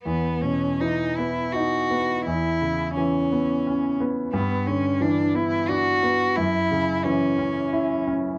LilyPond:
<<
  \new Staff \with { instrumentName = "Cello" } { \time 3/4 \key cis \minor \tempo 4 = 87 b8 cis'8 dis'8 e'8 fis'4 | e'4 cis'4. r8 | b8 cis'8 d'8 e'8 fis'4 | e'4 cis'4. r8 | }
  \new Staff \with { instrumentName = "Grand piano" } { \clef bass \time 3/4 \key cis \minor e,8 b,8 e8 b8 dis'8 b8 | e,8 cis8 e8 b8 cis'8 b8 | g,8 d8 e8 b8 d'8 b8 | fis,8 cis8 e8 cis'8 e'8 cis'8 | }
>>